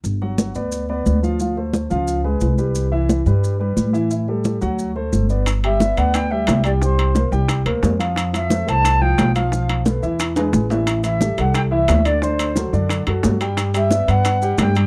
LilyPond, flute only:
\new Staff \with { instrumentName = "Flute" } { \time 4/4 \key g \major \tempo 4 = 177 r1 | r1 | r1 | r1 |
r8 e''4 fis''8 g''8 e''4 d''8 | c''4. r2 r8 | r8 e''4 a''4 g''4 f''8~ | f''4. r2 r8 |
r8 e''4 fis''8 g''8 e''4 d''8 | c''4. r2 r8 | r8 e''4 fis''4. g''4 | }